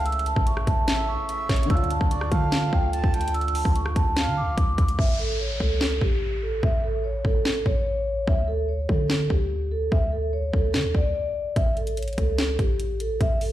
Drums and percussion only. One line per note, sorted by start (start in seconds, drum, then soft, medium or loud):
0.06 closed hi-hat medium
0.12 closed hi-hat medium
0.19 closed hi-hat soft
0.26 closed hi-hat medium
0.36 kick loud
0.47 closed hi-hat medium
0.57 cross-stick medium
0.67 kick loud
0.67 closed hi-hat medium
0.88 snare loud
0.88 closed hi-hat medium
1.29 closed hi-hat medium
1.49 kick medium
1.49 snare medium
1.49 closed hi-hat medium
1.56 closed hi-hat medium
1.63 closed hi-hat medium
1.70 kick loud
1.70 closed hi-hat medium
1.77 closed hi-hat medium
1.84 closed hi-hat soft
1.91 closed hi-hat medium
2.01 kick medium
2.11 closed hi-hat medium
2.21 cross-stick medium
2.32 kick loud
2.32 closed hi-hat medium
2.52 snare loud
2.52 closed hi-hat medium
2.73 kick medium
2.93 closed hi-hat medium
3.04 kick loud
3.14 closed hi-hat medium
3.21 closed hi-hat medium
3.28 closed hi-hat medium
3.34 closed hi-hat medium
3.41 closed hi-hat medium
3.48 closed hi-hat soft
3.55 open hi-hat medium
3.65 kick medium
3.76 closed hi-hat medium
3.86 cross-stick medium
3.96 kick medium
3.96 closed hi-hat medium
4.17 snare loud
4.17 closed hi-hat medium
4.58 kick loud
4.58 closed hi-hat medium
4.78 kick medium
4.78 closed hi-hat medium
4.88 closed hi-hat medium
4.99 kick loud
5.60 kick medium
5.81 snare loud
6.01 kick medium
6.63 kick loud
7.25 kick medium
7.45 snare loud
7.66 kick medium
8.27 kick loud
8.89 kick medium
9.10 snare loud
9.30 kick medium
9.92 kick loud
10.53 kick medium
10.74 snare loud
10.95 kick medium
11.56 kick loud
11.56 closed hi-hat medium
11.77 closed hi-hat soft
11.87 closed hi-hat medium
11.97 closed hi-hat medium
12.02 closed hi-hat medium
12.08 closed hi-hat medium
12.13 closed hi-hat soft
12.18 kick medium
12.18 closed hi-hat medium
12.38 snare loud
12.38 closed hi-hat medium
12.59 kick medium
12.59 closed hi-hat medium
12.80 closed hi-hat medium
13.00 closed hi-hat medium
13.21 kick loud
13.21 closed hi-hat medium
13.41 open hi-hat medium